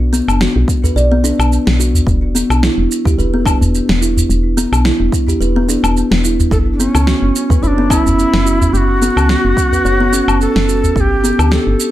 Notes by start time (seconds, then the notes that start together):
Already playing: B1
0.13 B3, shaker
0.28 F#1 D4, low woodblock, shaker
0.41 F#4, snare, shaker
0.56 B1
0.68 kick, shaker
0.83 B4, udu, shaker
0.96 B1 D5, shaker
1.12 B3
1.24 D4, shaker
1.39 B1, low woodblock, shaker
1.53 shaker
1.67 B1, snare
1.80 F#4, shaker
1.95 udu, shaker
2.07 E1, kick, shaker
2.35 B3, shaker
2.50 B1 D4, low woodblock, shaker
2.63 E4, snare, shaker
2.78 E1
2.92 shaker
3.05 G4, kick, udu, shaker
3.18 E1 B4, shaker
3.34 B3
3.46 D4, kick, low woodblock, shaker
3.61 E1, udu, shaker
3.75 shaker
3.89 E1, snare
4.02 E4, shaker
4.17 udu, shaker
4.30 E1, shaker
4.57 B3, shaker
4.73 B1 D4, low woodblock, shaker
4.85 E4, snare, shaker
5.00 E1
5.12 kick, shaker
5.27 G4, udu, shaker
5.40 E1 B4, shaker
5.56 B3
5.69 D4, shaker
5.84 E1, low woodblock, shaker
5.97 shaker
6.11 E1, snare
6.24 E4, shaker
6.40 udu, shaker
6.51 F#1 A4, kick, shaker
6.73 D4
6.79 B3 C#4, shaker
6.95 C#2 C#4, low woodblock, shaker
7.07 F#4, snare, shaker
7.22 F#1
7.36 shaker
7.50 B4, kick, udu, shaker
7.63 F#1 E4 C#5, shaker
7.67 D4
7.78 B3
7.90 C#4 E4, kick, low woodblock, shaker
8.06 F#1, udu, shaker
8.19 shaker
8.34 F#1, snare
8.46 F#4, shaker
8.62 udu, shaker
8.73 F#1 F#4 G4, shaker
9.02 B3, shaker
9.17 C#2 C#4, low woodblock, shaker
9.29 F#4, snare, shaker
9.45 F#1
9.57 kick, shaker
9.72 B4, udu, shaker
9.85 F#1 C#5, shaker
10.00 B3
10.13 C#4, shaker
10.28 F#1, low woodblock, shaker
10.41 A4, shaker
10.56 F#1, snare
10.68 F#4, shaker
10.84 udu, shaker
10.96 G1 A4, kick, shaker
11.00 G4
11.24 B3, shaker
11.39 D2 D4, low woodblock, shaker
11.51 G4 A4, snare, shaker
11.67 G1
11.80 shaker